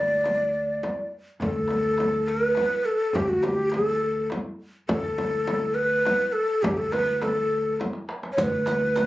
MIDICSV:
0, 0, Header, 1, 6, 480
1, 0, Start_track
1, 0, Tempo, 580271
1, 1167, Time_signature, 3, 2, 24, 8
1, 7498, End_track
2, 0, Start_track
2, 0, Title_t, "Ney"
2, 0, Program_c, 0, 77
2, 0, Note_on_c, 0, 74, 89
2, 888, Note_off_c, 0, 74, 0
2, 1174, Note_on_c, 0, 69, 87
2, 1890, Note_on_c, 0, 71, 87
2, 1903, Note_off_c, 0, 69, 0
2, 2361, Note_on_c, 0, 69, 80
2, 2373, Note_off_c, 0, 71, 0
2, 2604, Note_on_c, 0, 67, 73
2, 2616, Note_off_c, 0, 69, 0
2, 2717, Note_on_c, 0, 66, 71
2, 2730, Note_off_c, 0, 67, 0
2, 2834, Note_on_c, 0, 67, 70
2, 2847, Note_off_c, 0, 66, 0
2, 3060, Note_on_c, 0, 69, 77
2, 3073, Note_off_c, 0, 67, 0
2, 3554, Note_off_c, 0, 69, 0
2, 4044, Note_on_c, 0, 69, 92
2, 4754, Note_on_c, 0, 71, 99
2, 4766, Note_off_c, 0, 69, 0
2, 5232, Note_on_c, 0, 69, 83
2, 5245, Note_off_c, 0, 71, 0
2, 5478, Note_on_c, 0, 67, 79
2, 5490, Note_off_c, 0, 69, 0
2, 5604, Note_on_c, 0, 69, 78
2, 5616, Note_off_c, 0, 67, 0
2, 5729, Note_on_c, 0, 71, 89
2, 5741, Note_off_c, 0, 69, 0
2, 5972, Note_on_c, 0, 69, 74
2, 5985, Note_off_c, 0, 71, 0
2, 6451, Note_off_c, 0, 69, 0
2, 6888, Note_on_c, 0, 73, 60
2, 6949, Note_on_c, 0, 71, 89
2, 6962, Note_off_c, 0, 73, 0
2, 7498, Note_off_c, 0, 71, 0
2, 7498, End_track
3, 0, Start_track
3, 0, Title_t, "Upright bass"
3, 0, Program_c, 1, 32
3, 0, Note_on_c, 1, 38, 77
3, 654, Note_off_c, 1, 38, 0
3, 1163, Note_on_c, 1, 38, 83
3, 2092, Note_off_c, 1, 38, 0
3, 2610, Note_on_c, 1, 38, 78
3, 3536, Note_off_c, 1, 38, 0
3, 4041, Note_on_c, 1, 38, 85
3, 4972, Note_off_c, 1, 38, 0
3, 5489, Note_on_c, 1, 38, 81
3, 6417, Note_off_c, 1, 38, 0
3, 6935, Note_on_c, 1, 38, 83
3, 7498, Note_off_c, 1, 38, 0
3, 7498, End_track
4, 0, Start_track
4, 0, Title_t, "Frame drum"
4, 211, Note_on_c, 9, 64, 67
4, 294, Note_off_c, 9, 64, 0
4, 689, Note_on_c, 9, 64, 67
4, 772, Note_off_c, 9, 64, 0
4, 1175, Note_on_c, 9, 64, 74
4, 1258, Note_off_c, 9, 64, 0
4, 1410, Note_on_c, 9, 64, 54
4, 1493, Note_off_c, 9, 64, 0
4, 1656, Note_on_c, 9, 64, 53
4, 1738, Note_off_c, 9, 64, 0
4, 2128, Note_on_c, 9, 64, 58
4, 2211, Note_off_c, 9, 64, 0
4, 2607, Note_on_c, 9, 64, 78
4, 2690, Note_off_c, 9, 64, 0
4, 2842, Note_on_c, 9, 64, 59
4, 2924, Note_off_c, 9, 64, 0
4, 3092, Note_on_c, 9, 64, 60
4, 3175, Note_off_c, 9, 64, 0
4, 3573, Note_on_c, 9, 64, 65
4, 3655, Note_off_c, 9, 64, 0
4, 4045, Note_on_c, 9, 64, 88
4, 4128, Note_off_c, 9, 64, 0
4, 4287, Note_on_c, 9, 64, 64
4, 4370, Note_off_c, 9, 64, 0
4, 4528, Note_on_c, 9, 64, 69
4, 4611, Note_off_c, 9, 64, 0
4, 5017, Note_on_c, 9, 64, 65
4, 5099, Note_off_c, 9, 64, 0
4, 5494, Note_on_c, 9, 64, 90
4, 5576, Note_off_c, 9, 64, 0
4, 5735, Note_on_c, 9, 64, 61
4, 5817, Note_off_c, 9, 64, 0
4, 5975, Note_on_c, 9, 64, 63
4, 6058, Note_off_c, 9, 64, 0
4, 6459, Note_on_c, 9, 64, 65
4, 6541, Note_off_c, 9, 64, 0
4, 6932, Note_on_c, 9, 64, 87
4, 7015, Note_off_c, 9, 64, 0
4, 7177, Note_on_c, 9, 64, 62
4, 7260, Note_off_c, 9, 64, 0
4, 7423, Note_on_c, 9, 64, 63
4, 7498, Note_off_c, 9, 64, 0
4, 7498, End_track
5, 0, Start_track
5, 0, Title_t, "Riq"
5, 6934, Note_on_c, 9, 54, 60
5, 7017, Note_off_c, 9, 54, 0
5, 7170, Note_on_c, 9, 54, 49
5, 7252, Note_off_c, 9, 54, 0
5, 7408, Note_on_c, 9, 54, 48
5, 7491, Note_off_c, 9, 54, 0
5, 7498, End_track
6, 0, Start_track
6, 0, Title_t, "Tombak"
6, 200, Note_on_c, 9, 63, 60
6, 282, Note_off_c, 9, 63, 0
6, 331, Note_on_c, 9, 62, 25
6, 414, Note_off_c, 9, 62, 0
6, 446, Note_on_c, 9, 62, 25
6, 529, Note_off_c, 9, 62, 0
6, 574, Note_on_c, 9, 62, 24
6, 656, Note_off_c, 9, 62, 0
6, 694, Note_on_c, 9, 63, 59
6, 777, Note_off_c, 9, 63, 0
6, 929, Note_on_c, 9, 62, 23
6, 1011, Note_off_c, 9, 62, 0
6, 1157, Note_on_c, 9, 64, 87
6, 1239, Note_off_c, 9, 64, 0
6, 1387, Note_on_c, 9, 63, 59
6, 1470, Note_off_c, 9, 63, 0
6, 1635, Note_on_c, 9, 63, 60
6, 1718, Note_off_c, 9, 63, 0
6, 1756, Note_on_c, 9, 62, 25
6, 1839, Note_off_c, 9, 62, 0
6, 1882, Note_on_c, 9, 62, 26
6, 1964, Note_off_c, 9, 62, 0
6, 1996, Note_on_c, 9, 62, 27
6, 2079, Note_off_c, 9, 62, 0
6, 2107, Note_on_c, 9, 63, 55
6, 2189, Note_off_c, 9, 63, 0
6, 2590, Note_on_c, 9, 64, 86
6, 2673, Note_off_c, 9, 64, 0
6, 2835, Note_on_c, 9, 63, 58
6, 2918, Note_off_c, 9, 63, 0
6, 3074, Note_on_c, 9, 63, 61
6, 3157, Note_off_c, 9, 63, 0
6, 3202, Note_on_c, 9, 62, 28
6, 3285, Note_off_c, 9, 62, 0
6, 3318, Note_on_c, 9, 62, 27
6, 3401, Note_off_c, 9, 62, 0
6, 3439, Note_on_c, 9, 62, 30
6, 3522, Note_off_c, 9, 62, 0
6, 3556, Note_on_c, 9, 63, 57
6, 3638, Note_off_c, 9, 63, 0
6, 4050, Note_on_c, 9, 64, 83
6, 4132, Note_off_c, 9, 64, 0
6, 4291, Note_on_c, 9, 63, 58
6, 4373, Note_off_c, 9, 63, 0
6, 4538, Note_on_c, 9, 63, 59
6, 4621, Note_off_c, 9, 63, 0
6, 4654, Note_on_c, 9, 62, 28
6, 4737, Note_off_c, 9, 62, 0
6, 4771, Note_on_c, 9, 62, 26
6, 4854, Note_off_c, 9, 62, 0
6, 5007, Note_on_c, 9, 63, 58
6, 5090, Note_off_c, 9, 63, 0
6, 5482, Note_on_c, 9, 64, 73
6, 5564, Note_off_c, 9, 64, 0
6, 5726, Note_on_c, 9, 63, 62
6, 5809, Note_off_c, 9, 63, 0
6, 5968, Note_on_c, 9, 63, 70
6, 6051, Note_off_c, 9, 63, 0
6, 6098, Note_on_c, 9, 62, 24
6, 6180, Note_off_c, 9, 62, 0
6, 6333, Note_on_c, 9, 62, 27
6, 6416, Note_off_c, 9, 62, 0
6, 6451, Note_on_c, 9, 63, 50
6, 6533, Note_off_c, 9, 63, 0
6, 6560, Note_on_c, 9, 62, 59
6, 6643, Note_off_c, 9, 62, 0
6, 6690, Note_on_c, 9, 63, 68
6, 6773, Note_off_c, 9, 63, 0
6, 6810, Note_on_c, 9, 62, 73
6, 6892, Note_off_c, 9, 62, 0
6, 6927, Note_on_c, 9, 64, 77
6, 7010, Note_off_c, 9, 64, 0
6, 7163, Note_on_c, 9, 63, 74
6, 7246, Note_off_c, 9, 63, 0
6, 7412, Note_on_c, 9, 63, 70
6, 7495, Note_off_c, 9, 63, 0
6, 7498, End_track
0, 0, End_of_file